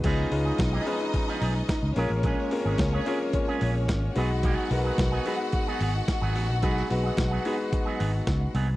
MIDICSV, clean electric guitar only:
0, 0, Header, 1, 3, 480
1, 0, Start_track
1, 0, Tempo, 548948
1, 35, Time_signature, 4, 2, 24, 8
1, 7664, End_track
2, 0, Start_track
2, 0, Title_t, "Clean electric guitar"
2, 0, Program_c, 0, 27
2, 34, Note_on_c, 0, 53, 78
2, 40, Note_on_c, 0, 59, 87
2, 44, Note_on_c, 0, 63, 89
2, 51, Note_on_c, 0, 68, 97
2, 256, Note_off_c, 0, 53, 0
2, 258, Note_off_c, 0, 59, 0
2, 260, Note_off_c, 0, 63, 0
2, 264, Note_off_c, 0, 68, 0
2, 397, Note_on_c, 0, 68, 63
2, 403, Note_on_c, 0, 63, 54
2, 409, Note_on_c, 0, 59, 45
2, 412, Note_on_c, 0, 53, 44
2, 497, Note_off_c, 0, 68, 0
2, 500, Note_off_c, 0, 63, 0
2, 503, Note_off_c, 0, 59, 0
2, 504, Note_off_c, 0, 53, 0
2, 637, Note_on_c, 0, 68, 66
2, 642, Note_on_c, 0, 63, 68
2, 647, Note_on_c, 0, 59, 64
2, 653, Note_on_c, 0, 53, 68
2, 746, Note_off_c, 0, 53, 0
2, 750, Note_off_c, 0, 59, 0
2, 755, Note_off_c, 0, 63, 0
2, 756, Note_on_c, 0, 53, 54
2, 761, Note_off_c, 0, 68, 0
2, 761, Note_on_c, 0, 59, 54
2, 765, Note_on_c, 0, 63, 64
2, 771, Note_on_c, 0, 68, 60
2, 857, Note_off_c, 0, 53, 0
2, 859, Note_off_c, 0, 59, 0
2, 861, Note_off_c, 0, 63, 0
2, 864, Note_off_c, 0, 68, 0
2, 1115, Note_on_c, 0, 68, 76
2, 1123, Note_on_c, 0, 63, 78
2, 1127, Note_on_c, 0, 59, 65
2, 1133, Note_on_c, 0, 53, 66
2, 1227, Note_off_c, 0, 53, 0
2, 1235, Note_off_c, 0, 59, 0
2, 1238, Note_on_c, 0, 53, 59
2, 1240, Note_off_c, 0, 63, 0
2, 1244, Note_off_c, 0, 68, 0
2, 1246, Note_on_c, 0, 59, 63
2, 1251, Note_on_c, 0, 63, 58
2, 1256, Note_on_c, 0, 68, 67
2, 1338, Note_off_c, 0, 53, 0
2, 1342, Note_off_c, 0, 59, 0
2, 1344, Note_off_c, 0, 63, 0
2, 1347, Note_off_c, 0, 68, 0
2, 1722, Note_on_c, 0, 56, 68
2, 1725, Note_on_c, 0, 61, 76
2, 1733, Note_on_c, 0, 65, 83
2, 1738, Note_on_c, 0, 68, 85
2, 1836, Note_off_c, 0, 68, 0
2, 1844, Note_off_c, 0, 65, 0
2, 1846, Note_off_c, 0, 61, 0
2, 1848, Note_off_c, 0, 56, 0
2, 1960, Note_on_c, 0, 56, 75
2, 1968, Note_on_c, 0, 61, 65
2, 1974, Note_on_c, 0, 65, 82
2, 1977, Note_on_c, 0, 68, 89
2, 2179, Note_off_c, 0, 56, 0
2, 2183, Note_off_c, 0, 61, 0
2, 2186, Note_off_c, 0, 65, 0
2, 2187, Note_off_c, 0, 68, 0
2, 2321, Note_on_c, 0, 68, 61
2, 2329, Note_on_c, 0, 65, 62
2, 2333, Note_on_c, 0, 61, 52
2, 2338, Note_on_c, 0, 56, 52
2, 2419, Note_off_c, 0, 68, 0
2, 2423, Note_off_c, 0, 65, 0
2, 2426, Note_off_c, 0, 61, 0
2, 2428, Note_off_c, 0, 56, 0
2, 2561, Note_on_c, 0, 68, 77
2, 2565, Note_on_c, 0, 65, 67
2, 2572, Note_on_c, 0, 61, 64
2, 2577, Note_on_c, 0, 56, 63
2, 2664, Note_off_c, 0, 56, 0
2, 2671, Note_off_c, 0, 61, 0
2, 2674, Note_on_c, 0, 56, 66
2, 2675, Note_off_c, 0, 65, 0
2, 2680, Note_off_c, 0, 68, 0
2, 2681, Note_on_c, 0, 61, 66
2, 2686, Note_on_c, 0, 65, 75
2, 2691, Note_on_c, 0, 68, 74
2, 2776, Note_off_c, 0, 56, 0
2, 2780, Note_off_c, 0, 61, 0
2, 2782, Note_off_c, 0, 65, 0
2, 2784, Note_off_c, 0, 68, 0
2, 3039, Note_on_c, 0, 68, 80
2, 3046, Note_on_c, 0, 65, 71
2, 3052, Note_on_c, 0, 61, 73
2, 3056, Note_on_c, 0, 56, 66
2, 3146, Note_off_c, 0, 56, 0
2, 3156, Note_off_c, 0, 61, 0
2, 3156, Note_on_c, 0, 56, 64
2, 3161, Note_off_c, 0, 65, 0
2, 3166, Note_on_c, 0, 61, 60
2, 3167, Note_off_c, 0, 68, 0
2, 3171, Note_on_c, 0, 65, 65
2, 3176, Note_on_c, 0, 68, 81
2, 3257, Note_off_c, 0, 56, 0
2, 3262, Note_off_c, 0, 61, 0
2, 3265, Note_off_c, 0, 65, 0
2, 3267, Note_off_c, 0, 68, 0
2, 3642, Note_on_c, 0, 54, 70
2, 3648, Note_on_c, 0, 59, 71
2, 3654, Note_on_c, 0, 63, 82
2, 3659, Note_on_c, 0, 68, 87
2, 3753, Note_off_c, 0, 68, 0
2, 3760, Note_off_c, 0, 63, 0
2, 3766, Note_off_c, 0, 59, 0
2, 3768, Note_off_c, 0, 54, 0
2, 3879, Note_on_c, 0, 53, 73
2, 3888, Note_on_c, 0, 59, 84
2, 3894, Note_on_c, 0, 63, 77
2, 3895, Note_on_c, 0, 68, 84
2, 3976, Note_off_c, 0, 53, 0
2, 3976, Note_on_c, 0, 54, 73
2, 4099, Note_off_c, 0, 54, 0
2, 4103, Note_off_c, 0, 59, 0
2, 4106, Note_off_c, 0, 63, 0
2, 4106, Note_off_c, 0, 68, 0
2, 4236, Note_on_c, 0, 68, 61
2, 4240, Note_on_c, 0, 63, 61
2, 4248, Note_on_c, 0, 59, 51
2, 4252, Note_on_c, 0, 54, 52
2, 4337, Note_off_c, 0, 68, 0
2, 4339, Note_off_c, 0, 63, 0
2, 4343, Note_off_c, 0, 59, 0
2, 4345, Note_off_c, 0, 54, 0
2, 4476, Note_on_c, 0, 68, 76
2, 4481, Note_on_c, 0, 63, 88
2, 4487, Note_on_c, 0, 59, 64
2, 4491, Note_on_c, 0, 54, 62
2, 4584, Note_off_c, 0, 54, 0
2, 4592, Note_off_c, 0, 59, 0
2, 4594, Note_on_c, 0, 54, 72
2, 4599, Note_off_c, 0, 63, 0
2, 4602, Note_off_c, 0, 68, 0
2, 4602, Note_on_c, 0, 59, 62
2, 4609, Note_on_c, 0, 63, 68
2, 4613, Note_on_c, 0, 68, 68
2, 4696, Note_off_c, 0, 54, 0
2, 4700, Note_off_c, 0, 59, 0
2, 4703, Note_off_c, 0, 63, 0
2, 4705, Note_off_c, 0, 68, 0
2, 4961, Note_on_c, 0, 68, 84
2, 4967, Note_on_c, 0, 63, 83
2, 4972, Note_on_c, 0, 59, 73
2, 4979, Note_on_c, 0, 54, 69
2, 5069, Note_off_c, 0, 54, 0
2, 5077, Note_off_c, 0, 59, 0
2, 5079, Note_on_c, 0, 54, 59
2, 5080, Note_off_c, 0, 63, 0
2, 5087, Note_off_c, 0, 68, 0
2, 5087, Note_on_c, 0, 59, 59
2, 5090, Note_on_c, 0, 63, 68
2, 5096, Note_on_c, 0, 68, 81
2, 5178, Note_off_c, 0, 54, 0
2, 5182, Note_off_c, 0, 59, 0
2, 5183, Note_off_c, 0, 63, 0
2, 5187, Note_off_c, 0, 68, 0
2, 5432, Note_on_c, 0, 68, 76
2, 5439, Note_on_c, 0, 63, 70
2, 5446, Note_on_c, 0, 59, 72
2, 5449, Note_on_c, 0, 54, 72
2, 5543, Note_off_c, 0, 54, 0
2, 5548, Note_off_c, 0, 59, 0
2, 5553, Note_off_c, 0, 63, 0
2, 5553, Note_on_c, 0, 54, 57
2, 5558, Note_off_c, 0, 68, 0
2, 5558, Note_on_c, 0, 59, 62
2, 5563, Note_on_c, 0, 63, 61
2, 5568, Note_on_c, 0, 68, 65
2, 5655, Note_off_c, 0, 54, 0
2, 5657, Note_off_c, 0, 59, 0
2, 5660, Note_off_c, 0, 63, 0
2, 5660, Note_off_c, 0, 68, 0
2, 5787, Note_on_c, 0, 54, 79
2, 5795, Note_on_c, 0, 59, 78
2, 5797, Note_on_c, 0, 63, 78
2, 5803, Note_on_c, 0, 68, 91
2, 6012, Note_off_c, 0, 54, 0
2, 6015, Note_off_c, 0, 59, 0
2, 6017, Note_off_c, 0, 63, 0
2, 6020, Note_off_c, 0, 68, 0
2, 6152, Note_on_c, 0, 68, 59
2, 6158, Note_on_c, 0, 63, 50
2, 6164, Note_on_c, 0, 59, 49
2, 6167, Note_on_c, 0, 54, 50
2, 6254, Note_off_c, 0, 68, 0
2, 6257, Note_off_c, 0, 63, 0
2, 6260, Note_off_c, 0, 59, 0
2, 6261, Note_off_c, 0, 54, 0
2, 6393, Note_on_c, 0, 68, 70
2, 6398, Note_on_c, 0, 63, 72
2, 6404, Note_on_c, 0, 59, 65
2, 6410, Note_on_c, 0, 54, 60
2, 6501, Note_off_c, 0, 54, 0
2, 6508, Note_off_c, 0, 59, 0
2, 6511, Note_off_c, 0, 63, 0
2, 6511, Note_on_c, 0, 54, 55
2, 6518, Note_off_c, 0, 68, 0
2, 6518, Note_on_c, 0, 59, 69
2, 6522, Note_on_c, 0, 63, 65
2, 6528, Note_on_c, 0, 68, 61
2, 6613, Note_off_c, 0, 54, 0
2, 6617, Note_off_c, 0, 59, 0
2, 6619, Note_off_c, 0, 63, 0
2, 6622, Note_off_c, 0, 68, 0
2, 6866, Note_on_c, 0, 68, 80
2, 6875, Note_on_c, 0, 63, 76
2, 6881, Note_on_c, 0, 59, 64
2, 6884, Note_on_c, 0, 54, 76
2, 6979, Note_off_c, 0, 54, 0
2, 6985, Note_off_c, 0, 59, 0
2, 6989, Note_on_c, 0, 54, 64
2, 6990, Note_off_c, 0, 63, 0
2, 6994, Note_off_c, 0, 68, 0
2, 6995, Note_on_c, 0, 59, 66
2, 7000, Note_on_c, 0, 63, 61
2, 7004, Note_on_c, 0, 68, 67
2, 7092, Note_off_c, 0, 54, 0
2, 7095, Note_off_c, 0, 59, 0
2, 7098, Note_off_c, 0, 63, 0
2, 7100, Note_off_c, 0, 68, 0
2, 7466, Note_on_c, 0, 54, 81
2, 7473, Note_on_c, 0, 59, 87
2, 7479, Note_on_c, 0, 63, 82
2, 7484, Note_on_c, 0, 68, 82
2, 7581, Note_off_c, 0, 68, 0
2, 7587, Note_off_c, 0, 63, 0
2, 7592, Note_off_c, 0, 59, 0
2, 7599, Note_off_c, 0, 54, 0
2, 7664, End_track
3, 0, Start_track
3, 0, Title_t, "Muted clean electric guitar strokes"
3, 277, Note_on_c, 9, 29, 38
3, 364, Note_off_c, 9, 29, 0
3, 530, Note_on_c, 9, 29, 34
3, 617, Note_off_c, 9, 29, 0
3, 999, Note_on_c, 9, 29, 40
3, 1087, Note_off_c, 9, 29, 0
3, 1359, Note_on_c, 9, 29, 36
3, 1447, Note_off_c, 9, 29, 0
3, 1600, Note_on_c, 9, 29, 46
3, 1687, Note_off_c, 9, 29, 0
3, 1846, Note_on_c, 9, 29, 43
3, 1934, Note_off_c, 9, 29, 0
3, 2200, Note_on_c, 9, 29, 40
3, 2288, Note_off_c, 9, 29, 0
3, 2443, Note_on_c, 9, 29, 38
3, 2530, Note_off_c, 9, 29, 0
3, 2801, Note_on_c, 9, 29, 38
3, 2889, Note_off_c, 9, 29, 0
3, 2918, Note_on_c, 9, 29, 35
3, 3005, Note_off_c, 9, 29, 0
3, 3285, Note_on_c, 9, 29, 44
3, 3372, Note_off_c, 9, 29, 0
3, 3520, Note_on_c, 9, 29, 47
3, 3607, Note_off_c, 9, 29, 0
3, 3763, Note_on_c, 9, 29, 55
3, 3851, Note_off_c, 9, 29, 0
3, 4357, Note_on_c, 9, 29, 35
3, 4445, Note_off_c, 9, 29, 0
3, 4721, Note_on_c, 9, 29, 51
3, 4809, Note_off_c, 9, 29, 0
3, 4844, Note_on_c, 9, 29, 36
3, 4931, Note_off_c, 9, 29, 0
3, 5201, Note_on_c, 9, 29, 39
3, 5289, Note_off_c, 9, 29, 0
3, 5323, Note_on_c, 9, 29, 38
3, 5410, Note_off_c, 9, 29, 0
3, 5671, Note_on_c, 9, 29, 45
3, 5758, Note_off_c, 9, 29, 0
3, 6033, Note_on_c, 9, 29, 43
3, 6121, Note_off_c, 9, 29, 0
3, 6273, Note_on_c, 9, 29, 39
3, 6361, Note_off_c, 9, 29, 0
3, 6644, Note_on_c, 9, 29, 33
3, 6732, Note_off_c, 9, 29, 0
3, 6755, Note_on_c, 9, 29, 36
3, 6843, Note_off_c, 9, 29, 0
3, 7347, Note_on_c, 9, 29, 47
3, 7434, Note_off_c, 9, 29, 0
3, 7591, Note_on_c, 9, 29, 48
3, 7664, Note_off_c, 9, 29, 0
3, 7664, End_track
0, 0, End_of_file